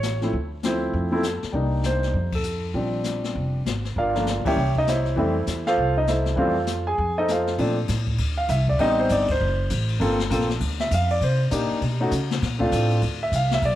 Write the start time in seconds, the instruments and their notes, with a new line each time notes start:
Already playing: upright bass A1, grand piano C#5
0.03 snare, hi-hat pedal
0.21 grand piano F3 A3 C4 E4, snare
0.33 upright bass D2, brush sweep, kick
0.63 grand piano F3 A3 C4 E4 C5, snare, hi-hat pedal
0.93 upright bass F2, brush sweep, kick
1.11 grand piano F3 A3 C4 E4
1.16 grand piano A4
1.23 snare, hi-hat pedal
1.43 muted upright bass stroke, snare
1.52 upright bass C2, grand piano G3 A#3 D4 D#4, brush sweep, kick
1.83 grand piano C5, snare, hi-hat pedal
2.03 snare
2.13 upright bass F2, brush sweep, kick
2.32 grand piano A4, kick, ride
2.44 hi-hat pedal
2.73 upright bass A#1, grand piano F3 G3 C4 D4, brush sweep, kick
3.04 snare, hi-hat pedal
3.24 snare
3.35 upright bass F1, brush sweep, kick
3.66 upright bass G#1, snare, hi-hat pedal
3.85 snare
3.96 upright bass G1, grand piano F4 A#4 D5 F5, brush sweep, kick
4.14 grand piano F3 A3 A#3 D4, snare
4.26 snare, hi-hat pedal
4.45 grand piano E3 G3 A#3 C#4 G4 C#5 E5 G5, muted upright bass stroke, kick, ride
4.56 upright bass C2, brush sweep
4.76 grand piano D#4 D#5, kick
4.87 grand piano E4 C5 C#5 E5, snare, hi-hat pedal
5.06 snare
5.16 upright bass F2, grand piano E3 G3 A3 C4 E4 A4 C5 E5, brush sweep, kick
5.47 upright bass E2, snare, hi-hat pedal
5.66 grand piano F4 A4 C5 F5, snare
5.77 upright bass C2, brush sweep, kick
5.97 grand piano D#4 D#5
6.07 grand piano E4 A4 C5 E5, snare, hi-hat pedal
6.26 snare
6.36 upright bass F2, grand piano E3 G3 A3 C4 F4 A4 C5 F5, brush sweep, kick
6.67 snare, hi-hat pedal
6.87 grand piano G#4 G#5
6.98 upright bass F2, brush sweep, kick
7.18 grand piano D#4 A4 C5 D#5
7.28 grand piano F4 A4 C5 F5, snare, hi-hat pedal
7.47 snare
7.58 upright bass A#2, grand piano F3 A3 C4 D4, kick, ride
7.88 upright bass A2, kick, snare, hi-hat pedal, ride
8.06 kick, ride
8.18 upright bass D2, ride
8.37 grand piano F5
8.48 upright bass C2, grand piano E5, kick, hi-hat pedal, ride
8.68 grand piano D5, kick
8.79 upright bass A1, grand piano G3 B3 C4 D#4 D#5, ride
8.99 grand piano C5
9.09 upright bass G1, grand piano D5, kick, hi-hat pedal, ride
9.28 grand piano C5, kick, crash
9.41 upright bass F#1
9.70 upright bass A1, kick, hi-hat pedal, ride
9.88 ride
10.00 upright bass G1, grand piano A#3 C4 F4 A4, kick, ride
10.20 snare
10.30 upright bass A#1, grand piano A#3 C4 F4 A4, kick, hi-hat pedal, ride
10.40 snare
10.49 snare, ride
10.60 upright bass D2, kick, ride
10.80 grand piano E5, snare
10.91 upright bass F2, grand piano F5, kick, hi-hat pedal, ride
11.10 grand piano D5, ride
11.21 upright bass C3, grand piano C5, kick, ride
11.51 upright bass A#2, grand piano A#3 D4 D#4 G4, kick, hi-hat pedal, ride
11.69 muted upright bass stroke, ride
11.81 upright bass B2, kick, ride
12.00 grand piano A3 C#4 D#4 F#4
12.11 upright bass C#3, kick, hi-hat pedal, ride
12.31 snare, ride
12.42 upright bass A#2, kick, snare, ride
12.59 grand piano A3 C4 D4 F4, kick
12.72 upright bass A2, kick, hi-hat pedal, ride
12.90 ride
13.01 upright bass D2, kick, ride
13.23 grand piano E5
13.32 upright bass C2, grand piano F5, kick, hi-hat pedal, ride
13.51 grand piano E5, snare, ride
13.62 upright bass B1, grand piano D5, kick, ride